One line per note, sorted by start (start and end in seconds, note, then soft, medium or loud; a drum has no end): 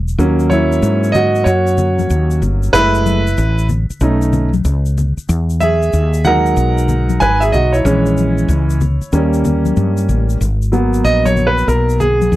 0.00 0.15 E1 medium
0.08 shaker soft
0.18 0.79 D#2 medium
0.18 2.70 F#3 medium
0.18 2.70 A#3 medium
0.18 2.71 C#4 medium
0.18 shaker medium
0.40 shaker soft
0.50 1.11 E4 medium
0.50 1.16 C#5 medium
0.50 high conga soft
0.50 shaker soft
0.72 shaker soft
0.82 1.43 G#2 loud
0.82 shaker medium
1.04 shaker soft
1.12 1.45 F#4 medium
1.12 1.46 D#5 medium
1.12 low conga medium
1.12 shaker soft
1.35 shaker soft
1.44 2.07 F#2 loud
1.44 2.39 F#4 medium
1.44 2.37 C#5 medium
1.44 shaker medium
1.67 shaker medium
1.78 low conga medium
1.78 shaker soft
1.99 high conga medium
1.99 shaker soft
2.10 2.41 D#2 medium
2.10 high conga soft
2.10 shaker medium
2.31 shaker soft
2.42 2.72 G1 medium
2.42 low conga medium
2.42 shaker soft
2.63 shaker soft
2.73 3.34 F#1 loud
2.73 3.20 G#3 medium
2.73 3.20 A3 medium
2.73 3.67 E4 medium
2.73 3.65 B4 loud
2.73 shaker medium
2.95 shaker soft
3.06 high conga soft
3.06 shaker soft
3.27 shaker soft
3.38 3.88 A1 loud
3.38 shaker medium
3.58 shaker soft
3.69 low conga medium
3.69 shaker soft
3.90 muted fretless electric bass stroke soft
3.90 shaker soft
4.01 4.62 B1 loud
4.01 4.48 A3 soft
4.01 4.48 C#4 soft
4.01 4.49 D#4 medium
4.01 shaker medium
4.22 shaker medium
4.33 low conga medium
4.33 shaker soft
4.54 high conga medium
4.54 shaker soft
4.65 5.15 C#2 loud
4.65 high conga soft
4.65 shaker medium
4.86 shaker medium
4.98 low conga medium
4.98 shaker soft
5.17 muted fretless electric bass stroke soft
5.17 shaker soft
5.29 5.90 E2 loud
5.29 shaker medium
5.50 shaker medium
5.60 6.22 G#4 medium
5.60 6.27 E5 medium
5.60 high conga soft
5.60 shaker soft
5.82 shaker soft
5.93 6.54 D#2 medium
5.93 shaker medium
6.14 shaker soft
6.25 7.81 F#3 medium
6.25 7.81 G#3 soft
6.25 7.82 D#4 medium
6.25 7.18 A#4 medium
6.25 7.17 F#5 loud
6.25 low conga medium
6.25 shaker soft
6.46 shaker soft
6.57 7.18 B1 medium
6.57 shaker medium
6.78 shaker soft
6.89 low conga medium
6.89 shaker soft
7.10 high conga medium
7.10 shaker soft
7.20 7.51 G#1 medium
7.20 7.41 B4 medium
7.20 7.42 G#5 loud
7.20 high conga soft
7.20 shaker medium
7.40 7.53 G#4 medium
7.40 7.53 E5 medium
7.40 shaker soft
7.52 7.84 B1 medium
7.52 7.73 F#4 medium
7.52 7.74 D#5 medium
7.52 low conga medium
7.52 shaker soft
7.73 10.05 E4 medium
7.73 10.04 C#5 medium
7.73 shaker soft
7.85 8.46 A#1 loud
7.85 8.76 E3 medium
7.85 8.77 G#3 medium
7.85 8.77 C#4 medium
7.85 shaker medium
8.06 shaker medium
8.17 high conga soft
8.17 shaker soft
8.38 shaker soft
8.49 8.99 C#2 medium
8.49 shaker medium
8.70 shaker soft
8.81 low conga medium
8.81 shaker soft
9.01 muted fretless electric bass stroke soft
9.01 shaker soft
9.13 9.73 D#2 loud
9.13 10.36 G3 medium
9.13 10.37 A#3 soft
9.13 10.37 C#4 medium
9.13 shaker medium
9.33 shaker medium
9.45 low conga medium
9.45 shaker soft
9.66 high conga medium
9.66 shaker soft
9.77 10.07 G2 medium
9.77 high conga soft
9.77 shaker medium
9.97 shaker soft
10.09 10.39 A1 medium
10.09 low conga medium
10.09 shaker soft
10.30 shaker soft
10.41 11.01 G#1 medium
10.41 shaker medium
10.62 shaker soft
10.72 12.36 F#3 medium
10.72 12.36 A#3 soft
10.72 12.36 B3 medium
10.72 high conga soft
10.72 shaker soft
10.94 shaker soft
11.05 11.65 A#1 medium
11.05 11.24 D#5 loud
11.05 shaker medium
11.25 11.47 C#5 medium
11.25 high conga medium
11.25 shaker soft
11.37 low conga medium
11.37 shaker soft
11.47 11.66 B4 medium
11.58 shaker soft
11.68 12.28 B1 medium
11.68 11.98 A#4 medium
11.68 shaker medium
11.89 shaker soft
12.00 12.36 G#4 medium
12.00 low conga medium
12.00 shaker soft
12.22 high conga medium
12.22 shaker soft
12.32 12.36 E2 medium
12.32 shaker medium